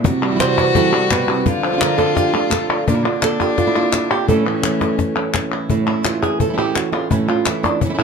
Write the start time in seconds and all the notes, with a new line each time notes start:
Already playing: E4
0.04 C3 F#4, muted nylon-string guitar stroke, cajon bass
0.22 G3, cajon slap
0.31 E3 G3 C4 E4
0.35 E3 G3 C4 E4
0.40 C3 E3 G3 C4 E4 C5, cajon slap, clap
0.57 B4, cajon bass, cajon slap
0.75 C3 E3 G3 C4 E4 A4, cajon bass
0.92 G3 C4 E4 G4
1.10 B2 B4, muted nylon-string guitar stroke, cajon bass, cajon slap, clap
1.28 C3 G3 C4 E4
1.46 D3 F4, muted nylon-string guitar stroke, cajon bass
1.63 F3, cajon slap
1.73 D3 A3 D4 F4
1.77 D3 A3 D4 F4
1.81 D3 A3 D4 F4 A#4, cajon slap, clap
1.98 A4, cajon bass, cajon slap
2.15 D3 A3 D4 F4 G4, cajon bass, cajon slap
2.33 A3 D4 F4
2.50 A4, muted nylon-string guitar stroke, cajon bass, cajon slap, clap
2.70 A3 D4 F4
2.87 A#2 D3 A#3 D4 F4, cajon bass
2.95 E4
3.03 D3 A#3 D4 F4
3.22 D3 A#3 D4 F4 A4, cajon slap, clap
3.40 A#3 D4 F4 G4, cajon bass, cajon slap
3.58 F4, muted nylon-string guitar stroke, cajon bass, cajon slap
3.67 E4
3.76 A#3 D4 F4
3.93 cajon slap, clap
4.11 G4
4.28 A2 E3 A3 C#4 E4 A4, cajon bass
4.45 E3 A3 C#4 E4, cajon slap
4.63 E3 A3 C#4 E4, cajon slap, clap
4.81 A3 C#4 E4, cajon bass, cajon slap, clap
4.98 muted nylon-string guitar stroke, cajon bass, cajon slap
5.15 A3 C#4 E4
5.34 C#4, cajon bass, cajon slap, clap
5.53 E4
5.69 A2 E3 A3 C#4 E4, cajon bass
5.87 A3 C#4 E4, cajon slap
6.05 E3 A3 C#4 E4 F4, cajon slap, clap
6.22 G#4, cajon bass, cajon slap, clap
6.40 A4, muted nylon-string guitar stroke, cajon bass
6.49 E3 A3 C#4 E4
6.53 E3 A3 C#4 E4
6.58 A2 E3 A3 C#4 E4 G4
6.75 E3 A3 C#4 E4 F#4, cajon slap, clap
6.92 A3 C#4 E4 F4
7.10 A2 E3 A3 C#4 E4, cajon bass
7.28 A3 C#4 E4 F4, cajon slap
7.46 E3 A3 C#4 E4, cajon slap, clap
7.63 D4, cajon bass, cajon slap
7.81 E3 C#4, muted nylon-string guitar stroke, cajon bass
7.85 E3 A3 C#4 E4
7.90 A3 C#4 E4
7.94 E3 A3 C#4 E4
7.98 A2 E3 A3 C#4 E4